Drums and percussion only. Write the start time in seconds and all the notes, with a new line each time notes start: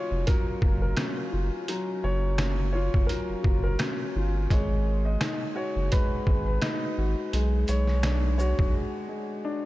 0.27 kick, closed hi-hat
0.62 kick
0.97 cross-stick, snare, closed hi-hat
1.68 closed hi-hat
2.38 cross-stick, snare, closed hi-hat
2.94 kick
3.09 closed hi-hat
3.44 kick
3.79 cross-stick, snare, closed hi-hat
4.50 kick, closed hi-hat
5.21 cross-stick, snare, closed hi-hat
5.92 kick, closed hi-hat
6.27 kick
6.62 cross-stick, snare, closed hi-hat
7.33 closed hi-hat
7.68 closed hi-hat, shaker
7.87 snare
8.03 cross-stick, snare, closed hi-hat
8.39 shaker
8.59 kick